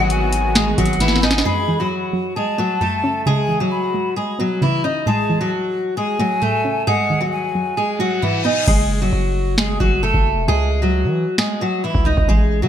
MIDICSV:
0, 0, Header, 1, 8, 480
1, 0, Start_track
1, 0, Tempo, 451128
1, 1550, Time_signature, 4, 2, 24, 8
1, 13497, End_track
2, 0, Start_track
2, 0, Title_t, "Flute"
2, 0, Program_c, 0, 73
2, 111, Note_on_c, 0, 80, 89
2, 788, Note_off_c, 0, 80, 0
2, 827, Note_on_c, 0, 78, 79
2, 1280, Note_off_c, 0, 78, 0
2, 1309, Note_on_c, 0, 80, 85
2, 1537, Note_off_c, 0, 80, 0
2, 1546, Note_on_c, 0, 83, 104
2, 1999, Note_off_c, 0, 83, 0
2, 2508, Note_on_c, 0, 81, 88
2, 3426, Note_off_c, 0, 81, 0
2, 3469, Note_on_c, 0, 80, 103
2, 3921, Note_off_c, 0, 80, 0
2, 3952, Note_on_c, 0, 83, 77
2, 4402, Note_off_c, 0, 83, 0
2, 5389, Note_on_c, 0, 81, 105
2, 5841, Note_off_c, 0, 81, 0
2, 6351, Note_on_c, 0, 80, 97
2, 7268, Note_off_c, 0, 80, 0
2, 7311, Note_on_c, 0, 78, 110
2, 7762, Note_off_c, 0, 78, 0
2, 7791, Note_on_c, 0, 80, 84
2, 8468, Note_off_c, 0, 80, 0
2, 8508, Note_on_c, 0, 78, 73
2, 8960, Note_off_c, 0, 78, 0
2, 8991, Note_on_c, 0, 80, 80
2, 9218, Note_off_c, 0, 80, 0
2, 13497, End_track
3, 0, Start_track
3, 0, Title_t, "Steel-string acoustic guitar"
3, 0, Program_c, 1, 25
3, 0, Note_on_c, 1, 54, 67
3, 0, Note_on_c, 1, 66, 82
3, 553, Note_off_c, 1, 66, 0
3, 558, Note_off_c, 1, 54, 0
3, 591, Note_on_c, 1, 68, 80
3, 599, Note_on_c, 1, 56, 62
3, 815, Note_off_c, 1, 68, 0
3, 819, Note_off_c, 1, 56, 0
3, 829, Note_on_c, 1, 66, 93
3, 839, Note_on_c, 1, 54, 69
3, 1054, Note_off_c, 1, 66, 0
3, 1059, Note_off_c, 1, 54, 0
3, 1069, Note_on_c, 1, 64, 93
3, 1077, Note_on_c, 1, 52, 69
3, 1294, Note_off_c, 1, 64, 0
3, 1298, Note_off_c, 1, 52, 0
3, 1310, Note_on_c, 1, 63, 82
3, 1319, Note_on_c, 1, 75, 63
3, 1534, Note_off_c, 1, 63, 0
3, 1539, Note_off_c, 1, 75, 0
3, 1546, Note_on_c, 1, 68, 94
3, 1555, Note_on_c, 1, 56, 70
3, 1886, Note_off_c, 1, 68, 0
3, 1891, Note_off_c, 1, 56, 0
3, 1913, Note_on_c, 1, 66, 73
3, 1922, Note_on_c, 1, 54, 56
3, 2476, Note_off_c, 1, 66, 0
3, 2481, Note_off_c, 1, 54, 0
3, 2513, Note_on_c, 1, 68, 78
3, 2522, Note_on_c, 1, 56, 61
3, 2736, Note_off_c, 1, 68, 0
3, 2741, Note_off_c, 1, 56, 0
3, 2749, Note_on_c, 1, 66, 82
3, 2758, Note_on_c, 1, 54, 60
3, 2974, Note_off_c, 1, 66, 0
3, 2978, Note_off_c, 1, 54, 0
3, 2991, Note_on_c, 1, 69, 86
3, 2999, Note_on_c, 1, 57, 65
3, 3442, Note_off_c, 1, 69, 0
3, 3446, Note_off_c, 1, 57, 0
3, 3476, Note_on_c, 1, 68, 100
3, 3484, Note_on_c, 1, 56, 80
3, 3811, Note_off_c, 1, 68, 0
3, 3816, Note_off_c, 1, 56, 0
3, 3833, Note_on_c, 1, 66, 76
3, 3842, Note_on_c, 1, 54, 58
3, 4396, Note_off_c, 1, 66, 0
3, 4400, Note_off_c, 1, 54, 0
3, 4430, Note_on_c, 1, 68, 75
3, 4439, Note_on_c, 1, 56, 56
3, 4654, Note_off_c, 1, 68, 0
3, 4659, Note_off_c, 1, 56, 0
3, 4677, Note_on_c, 1, 66, 78
3, 4685, Note_on_c, 1, 54, 64
3, 4898, Note_off_c, 1, 66, 0
3, 4902, Note_off_c, 1, 54, 0
3, 4915, Note_on_c, 1, 64, 82
3, 4924, Note_on_c, 1, 52, 66
3, 5137, Note_off_c, 1, 64, 0
3, 5142, Note_off_c, 1, 52, 0
3, 5151, Note_on_c, 1, 63, 73
3, 5160, Note_on_c, 1, 75, 59
3, 5375, Note_off_c, 1, 63, 0
3, 5379, Note_off_c, 1, 75, 0
3, 5393, Note_on_c, 1, 68, 91
3, 5402, Note_on_c, 1, 56, 71
3, 5730, Note_off_c, 1, 68, 0
3, 5735, Note_off_c, 1, 56, 0
3, 5752, Note_on_c, 1, 66, 78
3, 5760, Note_on_c, 1, 54, 59
3, 6315, Note_off_c, 1, 66, 0
3, 6319, Note_off_c, 1, 54, 0
3, 6352, Note_on_c, 1, 68, 86
3, 6360, Note_on_c, 1, 56, 60
3, 6575, Note_off_c, 1, 68, 0
3, 6579, Note_off_c, 1, 56, 0
3, 6591, Note_on_c, 1, 66, 88
3, 6599, Note_on_c, 1, 54, 61
3, 6815, Note_off_c, 1, 66, 0
3, 6819, Note_off_c, 1, 54, 0
3, 6827, Note_on_c, 1, 69, 86
3, 6836, Note_on_c, 1, 57, 75
3, 7280, Note_off_c, 1, 69, 0
3, 7284, Note_off_c, 1, 57, 0
3, 7311, Note_on_c, 1, 68, 108
3, 7320, Note_on_c, 1, 56, 78
3, 7649, Note_off_c, 1, 68, 0
3, 7654, Note_off_c, 1, 56, 0
3, 7666, Note_on_c, 1, 66, 75
3, 7675, Note_on_c, 1, 54, 63
3, 8232, Note_off_c, 1, 66, 0
3, 8237, Note_off_c, 1, 54, 0
3, 8269, Note_on_c, 1, 68, 79
3, 8277, Note_on_c, 1, 56, 61
3, 8494, Note_off_c, 1, 68, 0
3, 8498, Note_off_c, 1, 56, 0
3, 8510, Note_on_c, 1, 66, 90
3, 8519, Note_on_c, 1, 54, 67
3, 8734, Note_off_c, 1, 66, 0
3, 8739, Note_off_c, 1, 54, 0
3, 8749, Note_on_c, 1, 64, 87
3, 8757, Note_on_c, 1, 52, 63
3, 8974, Note_off_c, 1, 64, 0
3, 8978, Note_off_c, 1, 52, 0
3, 8990, Note_on_c, 1, 63, 77
3, 8998, Note_on_c, 1, 75, 60
3, 9214, Note_off_c, 1, 63, 0
3, 9219, Note_off_c, 1, 75, 0
3, 9229, Note_on_c, 1, 68, 99
3, 9237, Note_on_c, 1, 56, 76
3, 9568, Note_off_c, 1, 68, 0
3, 9572, Note_off_c, 1, 56, 0
3, 9593, Note_on_c, 1, 66, 79
3, 9601, Note_on_c, 1, 54, 57
3, 10156, Note_off_c, 1, 66, 0
3, 10160, Note_off_c, 1, 54, 0
3, 10192, Note_on_c, 1, 68, 79
3, 10200, Note_on_c, 1, 56, 67
3, 10415, Note_off_c, 1, 68, 0
3, 10420, Note_off_c, 1, 56, 0
3, 10428, Note_on_c, 1, 66, 84
3, 10437, Note_on_c, 1, 54, 63
3, 10653, Note_off_c, 1, 66, 0
3, 10658, Note_off_c, 1, 54, 0
3, 10671, Note_on_c, 1, 69, 88
3, 10679, Note_on_c, 1, 57, 68
3, 11122, Note_off_c, 1, 69, 0
3, 11126, Note_off_c, 1, 57, 0
3, 11154, Note_on_c, 1, 68, 104
3, 11163, Note_on_c, 1, 56, 81
3, 11491, Note_off_c, 1, 68, 0
3, 11495, Note_off_c, 1, 56, 0
3, 11511, Note_on_c, 1, 66, 75
3, 11520, Note_on_c, 1, 54, 62
3, 12075, Note_off_c, 1, 66, 0
3, 12079, Note_off_c, 1, 54, 0
3, 12110, Note_on_c, 1, 68, 77
3, 12119, Note_on_c, 1, 56, 61
3, 12334, Note_off_c, 1, 68, 0
3, 12339, Note_off_c, 1, 56, 0
3, 12355, Note_on_c, 1, 66, 85
3, 12364, Note_on_c, 1, 54, 67
3, 12577, Note_off_c, 1, 66, 0
3, 12582, Note_off_c, 1, 54, 0
3, 12596, Note_on_c, 1, 64, 88
3, 12605, Note_on_c, 1, 52, 70
3, 12817, Note_off_c, 1, 64, 0
3, 12822, Note_off_c, 1, 52, 0
3, 12832, Note_on_c, 1, 63, 74
3, 12840, Note_on_c, 1, 75, 59
3, 13055, Note_off_c, 1, 63, 0
3, 13060, Note_off_c, 1, 75, 0
3, 13073, Note_on_c, 1, 68, 89
3, 13082, Note_on_c, 1, 56, 74
3, 13410, Note_off_c, 1, 68, 0
3, 13415, Note_off_c, 1, 56, 0
3, 13430, Note_on_c, 1, 66, 78
3, 13439, Note_on_c, 1, 54, 61
3, 13497, Note_off_c, 1, 54, 0
3, 13497, Note_off_c, 1, 66, 0
3, 13497, End_track
4, 0, Start_track
4, 0, Title_t, "Analog synth pad"
4, 0, Program_c, 2, 89
4, 0, Note_on_c, 2, 51, 79
4, 0, Note_on_c, 2, 52, 72
4, 0, Note_on_c, 2, 59, 68
4, 0, Note_on_c, 2, 66, 84
4, 1507, Note_off_c, 2, 52, 0
4, 1531, Note_off_c, 2, 51, 0
4, 1531, Note_off_c, 2, 59, 0
4, 1531, Note_off_c, 2, 66, 0
4, 13497, End_track
5, 0, Start_track
5, 0, Title_t, "Synth pluck"
5, 0, Program_c, 3, 84
5, 1550, Note_on_c, 3, 42, 87
5, 1789, Note_on_c, 3, 52, 86
5, 2267, Note_on_c, 3, 54, 91
5, 2747, Note_on_c, 3, 57, 76
5, 2750, Note_off_c, 3, 42, 0
5, 2988, Note_on_c, 3, 42, 81
5, 2990, Note_off_c, 3, 52, 0
5, 3230, Note_on_c, 3, 61, 89
5, 3468, Note_off_c, 3, 57, 0
5, 3469, Note_off_c, 3, 42, 0
5, 3469, Note_off_c, 3, 54, 0
5, 3469, Note_on_c, 3, 49, 94
5, 3470, Note_off_c, 3, 61, 0
5, 3705, Note_on_c, 3, 52, 74
5, 4194, Note_on_c, 3, 56, 74
5, 4668, Note_on_c, 3, 59, 82
5, 4670, Note_off_c, 3, 49, 0
5, 4908, Note_off_c, 3, 52, 0
5, 4910, Note_on_c, 3, 49, 82
5, 5156, Note_on_c, 3, 61, 83
5, 5387, Note_on_c, 3, 45, 97
5, 5389, Note_off_c, 3, 59, 0
5, 5390, Note_off_c, 3, 49, 0
5, 5392, Note_off_c, 3, 56, 0
5, 5393, Note_off_c, 3, 61, 0
5, 5635, Note_on_c, 3, 52, 82
5, 6588, Note_off_c, 3, 45, 0
5, 6588, Note_on_c, 3, 57, 82
5, 6831, Note_on_c, 3, 45, 87
5, 6832, Note_off_c, 3, 52, 0
5, 7072, Note_on_c, 3, 61, 83
5, 7309, Note_off_c, 3, 57, 0
5, 7311, Note_off_c, 3, 45, 0
5, 7311, Note_off_c, 3, 61, 0
5, 7312, Note_on_c, 3, 44, 84
5, 7553, Note_on_c, 3, 51, 82
5, 8034, Note_on_c, 3, 54, 83
5, 8503, Note_on_c, 3, 56, 81
5, 8511, Note_off_c, 3, 44, 0
5, 8752, Note_off_c, 3, 51, 0
5, 8753, Note_on_c, 3, 44, 85
5, 8987, Note_on_c, 3, 59, 86
5, 9227, Note_off_c, 3, 56, 0
5, 9229, Note_off_c, 3, 59, 0
5, 9232, Note_off_c, 3, 44, 0
5, 9232, Note_off_c, 3, 54, 0
5, 13497, End_track
6, 0, Start_track
6, 0, Title_t, "808-style bass"
6, 0, Program_c, 4, 38
6, 0, Note_on_c, 4, 32, 113
6, 787, Note_off_c, 4, 32, 0
6, 831, Note_on_c, 4, 32, 105
6, 1522, Note_off_c, 4, 32, 0
6, 9231, Note_on_c, 4, 30, 110
6, 9691, Note_off_c, 4, 30, 0
6, 9710, Note_on_c, 4, 30, 103
6, 10401, Note_off_c, 4, 30, 0
6, 10431, Note_on_c, 4, 30, 100
6, 10776, Note_off_c, 4, 30, 0
6, 10791, Note_on_c, 4, 30, 105
6, 11030, Note_on_c, 4, 28, 101
6, 11046, Note_off_c, 4, 30, 0
6, 11144, Note_off_c, 4, 28, 0
6, 11151, Note_on_c, 4, 37, 111
6, 11750, Note_on_c, 4, 52, 102
6, 11766, Note_off_c, 4, 37, 0
6, 11978, Note_off_c, 4, 52, 0
6, 12710, Note_on_c, 4, 37, 101
6, 12940, Note_off_c, 4, 37, 0
6, 12951, Note_on_c, 4, 37, 97
6, 13063, Note_off_c, 4, 37, 0
6, 13070, Note_on_c, 4, 33, 110
6, 13429, Note_on_c, 4, 52, 105
6, 13445, Note_off_c, 4, 33, 0
6, 13497, Note_off_c, 4, 52, 0
6, 13497, End_track
7, 0, Start_track
7, 0, Title_t, "Reverse cymbal"
7, 0, Program_c, 5, 119
7, 8270, Note_on_c, 5, 60, 81
7, 9230, Note_off_c, 5, 60, 0
7, 13497, End_track
8, 0, Start_track
8, 0, Title_t, "Drums"
8, 106, Note_on_c, 9, 42, 78
8, 213, Note_off_c, 9, 42, 0
8, 346, Note_on_c, 9, 42, 80
8, 452, Note_off_c, 9, 42, 0
8, 589, Note_on_c, 9, 42, 77
8, 591, Note_on_c, 9, 38, 125
8, 596, Note_on_c, 9, 26, 92
8, 695, Note_off_c, 9, 42, 0
8, 697, Note_off_c, 9, 38, 0
8, 702, Note_off_c, 9, 26, 0
8, 830, Note_on_c, 9, 42, 72
8, 831, Note_on_c, 9, 36, 104
8, 910, Note_off_c, 9, 42, 0
8, 910, Note_on_c, 9, 42, 60
8, 937, Note_off_c, 9, 36, 0
8, 990, Note_off_c, 9, 42, 0
8, 990, Note_on_c, 9, 42, 41
8, 1068, Note_off_c, 9, 42, 0
8, 1068, Note_on_c, 9, 42, 82
8, 1070, Note_on_c, 9, 38, 65
8, 1150, Note_off_c, 9, 38, 0
8, 1150, Note_on_c, 9, 38, 65
8, 1174, Note_off_c, 9, 42, 0
8, 1230, Note_off_c, 9, 38, 0
8, 1230, Note_on_c, 9, 38, 82
8, 1310, Note_off_c, 9, 38, 0
8, 1310, Note_on_c, 9, 38, 84
8, 1390, Note_off_c, 9, 38, 0
8, 1390, Note_on_c, 9, 38, 105
8, 1470, Note_off_c, 9, 38, 0
8, 1470, Note_on_c, 9, 38, 101
8, 1576, Note_off_c, 9, 38, 0
8, 9230, Note_on_c, 9, 36, 114
8, 9230, Note_on_c, 9, 49, 98
8, 9336, Note_off_c, 9, 49, 0
8, 9337, Note_off_c, 9, 36, 0
8, 10190, Note_on_c, 9, 38, 120
8, 10195, Note_on_c, 9, 26, 92
8, 10297, Note_off_c, 9, 38, 0
8, 10302, Note_off_c, 9, 26, 0
8, 10431, Note_on_c, 9, 36, 101
8, 10538, Note_off_c, 9, 36, 0
8, 10791, Note_on_c, 9, 36, 100
8, 10897, Note_off_c, 9, 36, 0
8, 12110, Note_on_c, 9, 38, 117
8, 12115, Note_on_c, 9, 26, 95
8, 12217, Note_off_c, 9, 38, 0
8, 12222, Note_off_c, 9, 26, 0
8, 12710, Note_on_c, 9, 36, 100
8, 12817, Note_off_c, 9, 36, 0
8, 12951, Note_on_c, 9, 36, 95
8, 13057, Note_off_c, 9, 36, 0
8, 13070, Note_on_c, 9, 36, 112
8, 13176, Note_off_c, 9, 36, 0
8, 13497, End_track
0, 0, End_of_file